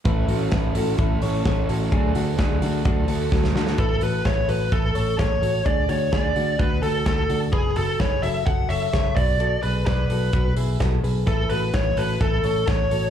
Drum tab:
HH |x-o-x-o-x-o-x-o-|x-o-x-o-x-o-----|x-o-x-o-x-o-x-o-|x-o-x-o-x-o-x-o-|
SD |----o-------o---|----o-------oooo|----o-------o---|----o-------o---|
BD |o---o---o---o---|o---o---o---o---|o---o---o---o---|o---o---o---o---|

HH |x-o-x-o-x-o-x-o-|x-o-x-o-x-o-x-o-|x-o-x-o-x-o-x-o-|
SD |----o-------o---|----o-------o---|----o-------o---|
BD |o---o---o---o-o-|----o---o---o---|o---o---o---o---|